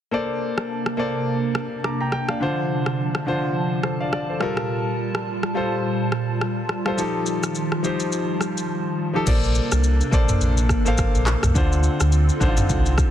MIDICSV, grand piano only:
0, 0, Header, 1, 2, 480
1, 0, Start_track
1, 0, Key_signature, -2, "major"
1, 0, Tempo, 571429
1, 105, Time_signature, 4, 2, 24, 8
1, 11009, End_track
2, 0, Start_track
2, 0, Title_t, "Grand piano"
2, 0, Program_c, 0, 0
2, 95, Note_on_c, 0, 58, 78
2, 102, Note_on_c, 0, 69, 70
2, 110, Note_on_c, 0, 72, 69
2, 116, Note_on_c, 0, 74, 84
2, 260, Control_c, 0, 64, 127
2, 575, Note_off_c, 0, 58, 0
2, 578, Note_off_c, 0, 69, 0
2, 582, Note_off_c, 0, 72, 0
2, 585, Note_off_c, 0, 74, 0
2, 815, Note_on_c, 0, 58, 82
2, 821, Note_on_c, 0, 69, 71
2, 829, Note_on_c, 0, 72, 73
2, 836, Note_on_c, 0, 74, 87
2, 1465, Note_off_c, 0, 58, 0
2, 1468, Note_off_c, 0, 69, 0
2, 1472, Note_off_c, 0, 72, 0
2, 1476, Note_off_c, 0, 74, 0
2, 1547, Note_on_c, 0, 86, 61
2, 1551, Note_on_c, 0, 82, 50
2, 1672, Note_off_c, 0, 82, 0
2, 1678, Note_off_c, 0, 86, 0
2, 1684, Note_on_c, 0, 82, 64
2, 1689, Note_on_c, 0, 79, 53
2, 1772, Note_off_c, 0, 79, 0
2, 1780, Note_off_c, 0, 82, 0
2, 1785, Note_on_c, 0, 79, 69
2, 1917, Note_off_c, 0, 79, 0
2, 1926, Note_on_c, 0, 77, 60
2, 1931, Note_on_c, 0, 74, 51
2, 2017, Note_on_c, 0, 50, 78
2, 2024, Note_on_c, 0, 62, 72
2, 2030, Note_on_c, 0, 65, 70
2, 2036, Control_c, 0, 64, 0
2, 2038, Note_on_c, 0, 72, 86
2, 2153, Note_off_c, 0, 77, 0
2, 2156, Note_off_c, 0, 74, 0
2, 2163, Control_c, 0, 64, 127
2, 2495, Note_off_c, 0, 50, 0
2, 2499, Note_off_c, 0, 62, 0
2, 2502, Note_off_c, 0, 65, 0
2, 2506, Note_off_c, 0, 72, 0
2, 2736, Note_on_c, 0, 50, 77
2, 2743, Note_on_c, 0, 62, 70
2, 2749, Note_on_c, 0, 65, 72
2, 2757, Note_on_c, 0, 72, 90
2, 3214, Note_off_c, 0, 72, 0
2, 3226, Note_on_c, 0, 72, 60
2, 3231, Note_on_c, 0, 69, 49
2, 3358, Note_off_c, 0, 72, 0
2, 3360, Note_off_c, 0, 69, 0
2, 3364, Note_on_c, 0, 77, 67
2, 3369, Note_on_c, 0, 74, 56
2, 3386, Note_off_c, 0, 50, 0
2, 3389, Note_off_c, 0, 62, 0
2, 3393, Note_off_c, 0, 65, 0
2, 3452, Note_off_c, 0, 74, 0
2, 3460, Note_off_c, 0, 77, 0
2, 3464, Note_on_c, 0, 74, 68
2, 3597, Note_off_c, 0, 74, 0
2, 3606, Note_on_c, 0, 72, 58
2, 3611, Note_on_c, 0, 69, 47
2, 3695, Note_on_c, 0, 55, 85
2, 3697, Note_off_c, 0, 69, 0
2, 3703, Note_on_c, 0, 65, 75
2, 3710, Note_on_c, 0, 69, 73
2, 3716, Control_c, 0, 64, 0
2, 3716, Note_on_c, 0, 70, 91
2, 3833, Note_off_c, 0, 72, 0
2, 3885, Control_c, 0, 64, 127
2, 4476, Note_off_c, 0, 55, 0
2, 4480, Note_off_c, 0, 65, 0
2, 4483, Note_off_c, 0, 69, 0
2, 4487, Note_off_c, 0, 70, 0
2, 4655, Note_on_c, 0, 55, 79
2, 4662, Note_on_c, 0, 65, 76
2, 4669, Note_on_c, 0, 69, 75
2, 4676, Note_on_c, 0, 72, 85
2, 5305, Note_off_c, 0, 55, 0
2, 5309, Note_off_c, 0, 65, 0
2, 5313, Note_off_c, 0, 69, 0
2, 5316, Note_off_c, 0, 72, 0
2, 5755, Note_on_c, 0, 55, 79
2, 5761, Note_on_c, 0, 65, 71
2, 5768, Note_on_c, 0, 69, 75
2, 5776, Note_on_c, 0, 72, 86
2, 5826, Note_off_c, 0, 55, 0
2, 5829, Note_off_c, 0, 65, 0
2, 5833, Note_off_c, 0, 69, 0
2, 5836, Note_off_c, 0, 72, 0
2, 5854, Note_on_c, 0, 53, 79
2, 5861, Note_on_c, 0, 63, 73
2, 5869, Note_on_c, 0, 67, 74
2, 5875, Note_on_c, 0, 69, 84
2, 5876, Control_c, 0, 64, 0
2, 6015, Control_c, 0, 64, 127
2, 6334, Note_off_c, 0, 53, 0
2, 6338, Note_off_c, 0, 63, 0
2, 6341, Note_off_c, 0, 67, 0
2, 6345, Note_off_c, 0, 69, 0
2, 6575, Note_on_c, 0, 53, 78
2, 6582, Note_on_c, 0, 63, 76
2, 6589, Note_on_c, 0, 67, 75
2, 6596, Note_on_c, 0, 72, 90
2, 7225, Note_off_c, 0, 53, 0
2, 7229, Note_off_c, 0, 63, 0
2, 7232, Note_off_c, 0, 67, 0
2, 7236, Note_off_c, 0, 72, 0
2, 7673, Note_on_c, 0, 53, 80
2, 7680, Note_on_c, 0, 63, 71
2, 7686, Note_on_c, 0, 67, 74
2, 7694, Note_on_c, 0, 69, 88
2, 7745, Note_off_c, 0, 53, 0
2, 7748, Note_off_c, 0, 63, 0
2, 7752, Note_off_c, 0, 67, 0
2, 7755, Note_off_c, 0, 69, 0
2, 7774, Note_on_c, 0, 58, 85
2, 7781, Note_on_c, 0, 69, 75
2, 7788, Note_on_c, 0, 72, 77
2, 7794, Note_on_c, 0, 74, 90
2, 7795, Control_c, 0, 64, 0
2, 7950, Control_c, 0, 64, 127
2, 8254, Note_off_c, 0, 58, 0
2, 8257, Note_off_c, 0, 69, 0
2, 8261, Note_off_c, 0, 72, 0
2, 8264, Note_off_c, 0, 74, 0
2, 8494, Note_on_c, 0, 58, 85
2, 8502, Note_on_c, 0, 69, 79
2, 8509, Note_on_c, 0, 72, 77
2, 8515, Note_on_c, 0, 74, 94
2, 8908, Note_off_c, 0, 58, 0
2, 8912, Note_off_c, 0, 69, 0
2, 8915, Note_off_c, 0, 72, 0
2, 8918, Note_off_c, 0, 74, 0
2, 9115, Note_on_c, 0, 58, 86
2, 9122, Note_on_c, 0, 69, 79
2, 9128, Note_on_c, 0, 72, 78
2, 9136, Note_on_c, 0, 77, 97
2, 9500, Note_off_c, 0, 58, 0
2, 9504, Note_off_c, 0, 69, 0
2, 9507, Note_off_c, 0, 72, 0
2, 9511, Note_off_c, 0, 77, 0
2, 9696, Note_on_c, 0, 50, 86
2, 9703, Note_on_c, 0, 62, 77
2, 9710, Note_on_c, 0, 65, 78
2, 9715, Control_c, 0, 64, 0
2, 9717, Note_on_c, 0, 72, 94
2, 9853, Control_c, 0, 64, 127
2, 10175, Note_off_c, 0, 50, 0
2, 10179, Note_off_c, 0, 62, 0
2, 10182, Note_off_c, 0, 65, 0
2, 10185, Note_off_c, 0, 72, 0
2, 10416, Note_on_c, 0, 50, 87
2, 10423, Note_on_c, 0, 62, 80
2, 10430, Note_on_c, 0, 63, 63
2, 10437, Note_on_c, 0, 72, 96
2, 10485, Note_on_c, 0, 65, 78
2, 10491, Note_off_c, 0, 63, 0
2, 10829, Note_off_c, 0, 50, 0
2, 10832, Note_off_c, 0, 62, 0
2, 10839, Note_off_c, 0, 72, 0
2, 10863, Note_off_c, 0, 65, 0
2, 11009, End_track
0, 0, End_of_file